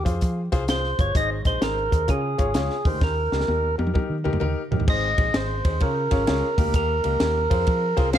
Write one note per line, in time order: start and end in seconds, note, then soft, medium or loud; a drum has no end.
0.05 0.19 F2 loud
0.05 0.40 F4 medium
0.05 0.40 G#4 medium
0.05 0.40 C5 loud
0.05 kick loud
0.05 closed hi-hat medium
0.21 0.48 F3 loud
0.21 kick loud
0.21 closed hi-hat medium
0.52 0.92 C2 medium
0.52 0.63 F4 loud
0.52 0.63 G#4 loud
0.52 0.63 C5 loud
0.52 kick medium
0.52 snare soft
0.52 closed hi-hat medium
0.68 0.88 F4 medium
0.68 0.88 G#4 medium
0.68 0.88 C5 loud
0.68 1.01 C5 loud
0.68 snare loud
0.68 closed hi-hat medium
0.84 snare soft
0.99 1.13 G1 loud
0.99 1.09 F4 medium
0.99 1.09 G#4 medium
0.99 1.09 C5 medium
0.99 1.16 C#5 loud
0.99 kick loud
0.99 closed hi-hat medium
1.15 1.41 G#1 loud
1.15 1.88 G#2 medium
1.15 1.35 D#4 loud
1.15 1.35 G#4 medium
1.15 1.35 C5 loud
1.15 1.30 D#5 loud
1.15 kick loud
1.15 closed hi-hat loud
1.45 1.59 A#1 medium
1.45 1.56 D#4 medium
1.45 1.56 G#4 medium
1.45 1.63 C5 loud
1.45 1.56 D#5 medium
1.45 kick medium
1.45 closed hi-hat medium
1.61 1.88 G#1 medium
1.61 1.81 D#4 medium
1.61 1.81 G#4 medium
1.61 2.10 A#4 medium
1.61 1.81 C5 medium
1.61 snare loud
1.61 closed hi-hat medium
1.91 2.06 D#2 medium
1.91 2.02 D#4 medium
1.91 2.02 G#4 medium
1.91 2.02 C5 medium
1.91 kick loud
1.91 closed hi-hat medium
2.08 2.81 C#3 medium
2.08 2.35 C#3 loud
2.08 2.28 F4 medium
2.08 2.28 G#4 medium
2.08 2.89 G#4 loud
2.08 2.28 C#5 medium
2.08 kick loud
2.08 closed hi-hat medium
2.38 2.53 G#1 medium
2.38 2.49 F4 medium
2.38 2.49 G#4 medium
2.38 2.49 C#5 loud
2.38 kick medium
2.38 closed hi-hat medium
2.54 2.68 C#2 loud
2.54 2.75 F4 loud
2.54 2.75 G#4 medium
2.54 2.75 C#5 loud
2.54 snare loud
2.54 closed hi-hat medium
2.70 snare soft
2.85 2.92 D#2 loud
2.85 3.44 D#3 medium
2.85 3.20 D#4 medium
2.85 3.20 G4 medium
2.85 3.20 A#4 medium
2.85 3.03 C5 medium
2.85 kick loud
2.85 open hi-hat soft
2.93 3.00 D2 medium
3.01 3.27 D#2 loud
3.01 3.76 A#4 medium
3.01 kick loud
3.01 snare medium
3.32 3.46 C#2 medium
3.32 3.43 D#4 medium
3.32 3.43 G4 medium
3.32 3.43 A#4 medium
3.32 snare medium
3.40 snare medium
3.48 3.74 D#2 medium
3.48 3.68 D#4 medium
3.48 3.68 G4 medium
3.48 3.68 A#4 medium
3.48 high tom medium
3.78 3.92 F2 medium
3.78 3.89 D#4 medium
3.78 3.89 G4 medium
3.78 3.89 A#4 medium
3.78 high tom medium
3.87 mid tom medium
3.94 4.14 D#4 medium
3.94 4.14 G4 medium
3.94 4.14 A#4 loud
3.94 kick medium
3.94 mid tom medium
4.10 4.23 D#3 medium
4.24 4.32 D#2 medium
4.24 4.35 D#4 loud
4.24 4.35 G4 loud
4.24 4.35 A#4 loud
4.24 mid tom medium
4.33 4.40 F2 medium
4.33 mid tom medium
4.40 4.54 D#2 medium
4.40 4.60 D#4 loud
4.40 4.61 G4 medium
4.40 4.60 A#4 loud
4.40 mid tom loud
4.71 4.79 F2 medium
4.71 4.82 D#4 medium
4.71 4.82 G4 medium
4.71 4.82 A#4 medium
4.71 floor tom loud
4.80 4.87 D#2 medium
4.80 floor tom medium
4.87 5.14 G#1 loud
4.87 5.61 G#2 medium
4.87 5.07 C4 medium
4.87 5.07 D#4 medium
4.87 5.08 G#4 medium
4.87 5.08 C5 loud
4.87 5.37 D#5 loud
4.87 kick loud
4.87 crash medium
5.18 5.32 A#1 medium
5.18 5.29 C4 medium
5.18 5.28 D#4 medium
5.18 5.28 G#4 medium
5.18 5.29 C5 medium
5.18 kick medium
5.18 ride medium
5.34 5.60 G#1 medium
5.34 5.54 C4 medium
5.34 5.54 D#4 medium
5.34 5.54 G#4 medium
5.34 5.54 C5 medium
5.34 5.83 C5 medium
5.34 snare loud
5.34 ride medium
5.65 5.78 D#2 medium
5.65 5.75 C4 medium
5.65 5.75 D#4 medium
5.65 5.75 G#4 medium
5.65 5.75 C5 medium
5.65 kick medium
5.65 ride medium
5.80 6.54 C#3 medium
5.80 6.07 C#3 loud
5.80 6.01 C#4 medium
5.80 6.01 F4 medium
5.80 6.01 G#4 medium
5.80 6.75 A#4 medium
5.80 6.01 C#5 medium
5.80 kick medium
5.80 ride medium
6.11 6.25 G#1 medium
6.11 6.21 C#4 medium
6.11 6.22 F4 medium
6.11 6.21 G#4 medium
6.11 6.22 C#5 loud
6.11 kick medium
6.11 snare soft
6.11 ride medium
6.27 6.41 C#2 loud
6.27 6.47 C#4 loud
6.27 6.47 F4 medium
6.27 6.47 G#4 medium
6.27 6.47 C#5 loud
6.27 snare loud
6.27 ride medium
6.58 6.65 D#2 loud
6.58 7.16 D#3 medium
6.58 6.92 A#3 medium
6.58 6.92 D#4 medium
6.58 6.92 G4 medium
6.58 6.92 A#4 loud
6.58 kick loud
6.58 open hi-hat medium
6.58 ride medium
6.67 6.73 D2 medium
6.74 7.00 D#2 loud
6.74 8.10 A#4 loud
6.74 kick loud
6.74 hi-hat pedal medium
6.74 ride medium
7.04 7.18 C#2 medium
7.04 7.14 A#3 medium
7.04 7.15 D#4 medium
7.04 7.14 G4 medium
7.04 7.14 A#4 medium
7.04 ride medium
7.20 7.46 D#2 medium
7.20 7.40 A#3 medium
7.20 7.40 D#4 medium
7.20 7.40 G4 medium
7.20 7.40 A#4 medium
7.20 snare loud
7.20 ride medium
7.50 7.65 F2 medium
7.50 7.85 C4 medium
7.50 7.85 F4 medium
7.50 7.85 G#4 medium
7.50 7.85 C5 loud
7.50 kick loud
7.50 ride medium
7.67 7.93 F3 loud
7.67 kick loud
7.67 ride medium
7.97 8.18 C2 medium
7.97 8.07 C4 loud
7.97 8.07 F4 loud
7.97 8.07 G#4 loud
7.97 8.07 C5 loud
7.97 kick medium
7.97 snare soft
7.97 ride medium
8.13 8.18 C4 loud
8.13 8.18 F4 medium
8.13 8.18 G#4 medium
8.13 8.18 C5 loud
8.13 8.18 F5 loud
8.13 snare loud
8.13 ride medium